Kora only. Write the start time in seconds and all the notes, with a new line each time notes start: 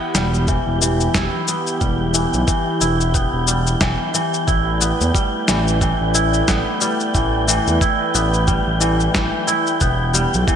Already playing: E3 B3 E4
0.15 G3
0.48 E3
0.81 E3
1.14 E4
1.48 B3
1.80 G3
2.14 E3
2.47 E3
2.81 E4
3.14 B3
3.48 G3
3.81 E3
4.14 E3
4.47 E4
4.81 B3
5.14 G3
5.48 E3
5.81 E3
6.14 E4
6.48 B3
6.81 G3
7.14 E3
7.48 E3
7.81 E4
8.14 B3
8.47 G3
8.81 E3
9.14 E3
9.47 E4
9.81 B3
10.14 G3
10.47 E3